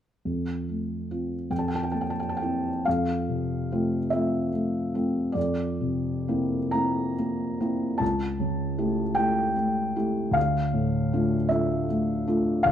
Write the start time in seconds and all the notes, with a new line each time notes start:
0.25 F2
0.69 A3
1.11 C4 F4
1.51 F2 G5
1.58 A5
1.68 G5
1.75 A5
1.83 G5
1.91 A#3 A5
2.01 G5
2.10 A5
2.19 G5
2.29 A5
2.37 G5
2.41 C4 E4
2.85 F2 F5
3.29 C3
3.72 A3 C4 F4
4.10 A3 C4 F4 E5
4.53 A3
4.94 A3 C4 F4
5.32 F2 D5
5.81 C3
6.28 A#3 C4 E4
6.71 A#3 C4 E4 A#5
7.19 A#3
7.60 A#3 C4 E4
7.98 C#2 A5
8.40 C#3
8.78 A3 E4 G4
9.15 A3 E4 G4 G5
9.56 A3
9.96 A3 E4 G4
10.31 D2 F5
10.73 A2
11.13 A3 D4 F4
11.49 A3 D4 F4 E5
11.89 A3
12.27 A3 D4 F4
12.63 D2 F5